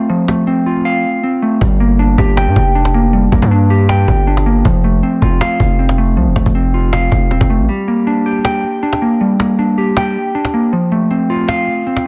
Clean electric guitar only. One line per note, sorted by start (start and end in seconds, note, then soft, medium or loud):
0.00 0.27 A3 medium
0.00 0.46 C4 medium
0.00 0.28 F5 loud
0.09 1.04 F3 medium
0.28 1.23 A3 medium
0.47 1.22 C4 medium
0.66 1.61 F4 medium
0.85 1.61 F5 medium
1.23 1.61 C4 medium
1.42 1.61 A3 medium
1.61 2.56 G3 medium
1.80 2.75 A#3 medium
1.99 2.74 D4 medium
2.18 3.13 G4 medium
2.37 3.32 G5 medium
2.75 3.50 D4 medium
2.94 3.31 A#3 medium
3.13 4.08 G3 medium
3.32 4.27 A#3 medium
3.51 4.26 D4 medium
3.70 4.65 G4 medium
3.89 4.65 G5 loud
4.27 4.65 D4 medium
4.46 4.65 A#3 medium
4.65 5.60 F3 medium
4.84 5.79 A3 medium
5.03 5.78 C4 medium
5.22 6.17 F4 medium
5.41 6.36 F5 loud
5.79 6.54 C4 medium
5.98 6.35 A3 medium
6.17 7.12 F3 medium
6.36 7.31 A3 medium
6.55 7.30 C4 medium
6.74 7.68 F4 medium
6.93 7.69 F5 medium
7.31 7.69 C4 medium
7.50 7.69 A3 medium
7.69 8.64 G3 medium
7.88 8.83 A#3 medium
8.07 8.82 D4 medium
8.26 9.21 G4 medium
8.45 9.40 G5 medium
8.83 9.58 D4 medium
9.02 9.39 A#3 medium
9.21 10.16 G3 medium
9.40 10.35 A#3 medium
9.59 10.34 D4 medium
9.78 10.73 G4 medium
9.97 10.73 G5 medium
10.35 10.73 D4 medium
10.54 10.73 A#3 medium
10.73 11.68 F3 medium
10.92 11.87 A3 medium
11.11 11.86 C4 medium
11.30 12.07 F4 medium
11.49 12.07 F5 loud
11.87 12.07 C4 medium